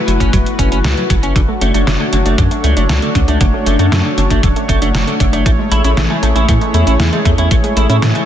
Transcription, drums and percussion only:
0.08 closed hi-hat medium
0.20 kick medium
0.20 closed hi-hat medium
0.33 kick loud
0.33 closed hi-hat medium
0.46 closed hi-hat soft
0.59 kick medium
0.59 closed hi-hat medium
0.72 closed hi-hat medium
0.84 snare loud
0.84 closed hi-hat medium
0.97 closed hi-hat soft
1.10 kick loud
1.10 closed hi-hat medium
1.23 closed hi-hat medium
1.36 kick loud
1.36 closed hi-hat medium
1.61 closed hi-hat medium
1.74 closed hi-hat soft
1.87 snare loud
1.87 closed hi-hat medium
2.13 closed hi-hat medium
2.26 closed hi-hat soft
2.38 kick loud
2.38 closed hi-hat medium
2.51 closed hi-hat soft
2.64 closed hi-hat medium
2.77 closed hi-hat medium
2.89 snare loud
2.89 closed hi-hat medium
3.02 closed hi-hat soft
3.15 kick loud
3.15 closed hi-hat medium
3.28 closed hi-hat medium
3.41 kick loud
3.41 closed hi-hat medium
3.66 closed hi-hat medium
3.79 closed hi-hat soft
3.92 snare loud
3.92 closed hi-hat medium
4.18 closed hi-hat medium
4.30 kick medium
4.30 closed hi-hat soft
4.43 kick loud
4.43 closed hi-hat medium
4.56 closed hi-hat soft
4.69 kick medium
4.69 closed hi-hat medium
4.82 closed hi-hat medium
4.95 snare loud
4.95 closed hi-hat medium
5.07 closed hi-hat soft
5.20 kick loud
5.20 closed hi-hat medium
5.33 closed hi-hat soft
5.46 kick loud
5.46 closed hi-hat medium
5.72 closed hi-hat medium
5.84 closed hi-hat medium
5.97 snare loud
5.97 closed hi-hat medium
6.23 closed hi-hat medium
6.36 closed hi-hat medium
6.49 kick loud
6.49 closed hi-hat medium
6.61 closed hi-hat soft
6.74 closed hi-hat medium
6.87 closed hi-hat medium
7.00 snare loud
7.00 closed hi-hat medium
7.13 closed hi-hat soft
7.25 kick loud
7.25 closed hi-hat medium
7.38 closed hi-hat medium
7.51 kick loud
7.51 closed hi-hat medium
7.64 closed hi-hat soft
7.77 closed hi-hat medium
7.90 closed hi-hat medium
8.02 snare loud
8.02 closed hi-hat medium
8.15 closed hi-hat soft

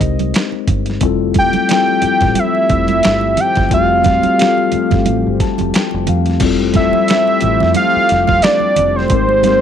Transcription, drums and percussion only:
0.01 kick medium
0.01 closed hi-hat medium
0.19 closed hi-hat soft
0.19 high conga medium
0.34 finger snap medium
0.34 snare loud
0.34 closed hi-hat medium
0.52 muted conga soft
0.68 kick medium
0.68 closed hi-hat medium
0.68 low conga medium
0.86 snare soft
0.86 closed hi-hat soft
1.00 kick loud
1.00 closed hi-hat medium
1.00 muted conga soft
1.34 kick medium
1.34 closed hi-hat medium
1.34 high conga medium
1.53 closed hi-hat soft
1.53 high conga medium
1.69 finger snap medium
1.69 snare loud
1.69 closed hi-hat medium
1.69 muted conga soft
1.88 muted conga soft
2.02 closed hi-hat medium
2.02 low conga medium
2.21 kick medium
2.21 snare soft
2.21 closed hi-hat soft
2.21 low conga medium
2.35 closed hi-hat medium
2.35 muted conga soft
2.35 high conga medium
2.55 muted conga soft
2.69 kick medium
2.69 closed hi-hat medium
2.88 closed hi-hat soft
2.88 high conga medium
3.03 finger snap medium
3.03 snare loud
3.03 closed hi-hat medium
3.21 muted conga soft
3.37 closed hi-hat medium
3.37 low conga medium
3.56 kick medium
3.56 snare soft
3.56 closed hi-hat soft
3.69 kick medium
3.69 closed hi-hat medium
3.69 muted conga soft
4.04 kick medium
4.04 closed hi-hat medium
4.04 high conga medium
4.08 snare soft
4.23 closed hi-hat soft
4.23 high conga medium
4.39 finger snap medium
4.39 snare loud
4.39 closed hi-hat medium
4.39 muted conga soft
4.58 muted conga soft
4.72 closed hi-hat medium
4.72 low conga medium
4.91 kick medium
4.91 snare soft
4.91 closed hi-hat soft
4.91 low conga medium
5.06 closed hi-hat medium
5.06 muted conga soft
5.06 high conga medium
5.40 kick medium
5.40 snare soft
5.40 closed hi-hat medium
5.58 closed hi-hat soft
5.58 high conga medium
5.74 finger snap medium
5.74 snare loud
5.74 closed hi-hat medium
5.74 muted conga soft
5.91 muted conga soft
6.07 closed hi-hat medium
6.07 low conga medium
6.26 snare soft
6.26 closed hi-hat soft
6.40 kick loud
6.40 closed hi-hat medium
6.40 crash medium
6.40 muted conga soft
6.60 muted conga soft
6.74 kick medium
6.74 snare soft
6.74 closed hi-hat medium
6.74 high conga medium
6.93 high conga medium
7.08 finger snap medium
7.08 snare loud
7.08 closed hi-hat medium
7.08 muted conga soft
7.28 muted conga soft
7.41 closed hi-hat medium
7.41 low conga medium
7.60 snare soft
7.60 low conga medium
7.74 closed hi-hat medium
7.74 high conga medium
8.09 snare soft
8.09 closed hi-hat medium
8.27 kick medium
8.27 high conga medium
8.42 finger snap loud
8.42 snare loud
8.42 closed hi-hat medium
8.60 high conga soft
8.76 closed hi-hat medium
8.76 low conga medium
8.99 snare soft
9.08 kick medium
9.08 closed hi-hat medium
9.08 muted conga soft
9.29 muted conga soft
9.43 closed hi-hat medium
9.43 high conga medium
9.48 snare soft

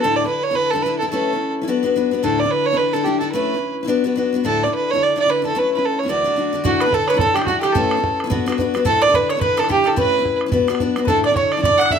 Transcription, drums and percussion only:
6.65 bodhran medium
6.80 bodhran medium
6.93 bodhran medium
7.08 bodhran soft
7.19 bodhran medium
7.27 bodhran soft
7.36 bodhran medium
7.42 bodhran medium
7.47 bodhran medium
7.63 bodhran medium
7.75 bodhran medium
7.91 bodhran medium
8.04 bodhran medium
8.20 bodhran soft
8.31 bodhran medium
8.40 bodhran soft
8.48 bodhran medium
8.52 bodhran medium
8.59 bodhran medium
8.75 bodhran soft
8.85 bodhran medium
9.02 bodhran soft
9.14 bodhran medium
9.29 bodhran soft
9.41 bodhran medium
9.50 bodhran soft
9.58 bodhran soft
9.64 bodhran soft
9.70 bodhran medium
9.86 bodhran soft
9.97 bodhran medium
10.25 bodhran medium
10.41 bodhran soft
10.52 bodhran medium
10.61 bodhran soft
10.68 bodhran medium
10.75 bodhran soft
10.80 bodhran medium
10.96 bodhran medium
11.07 bodhran medium
11.24 bodhran soft
11.36 bodhran medium
11.52 bodhran soft
11.63 bodhran medium
11.72 bodhran soft
11.80 bodhran medium
11.86 bodhran medium
11.90 bodhran medium

